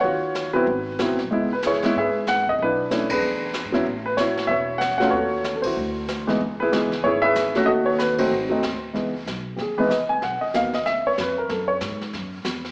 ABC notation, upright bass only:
X:1
M:4/4
L:1/8
Q:"Swing" 1/4=188
K:C#m
V:1 name="Upright bass" clef=bass
D,,4 G,,,3 B,,, | C,,3 z G,,3 C,, | B,,,4 E,,2- (3E,, G,, E,, | A,,,4 E,,,4 |
D,,4 =D,,4 | C,,4 G,,,4 | D,,4 G,,,2 =D,,2 | C,,2 B,,,2 D,, z C,,2 |
B,,, z D,,2 C,,2 ^E,,2 | F,,2 G,,2 F,,2 E,,2 |]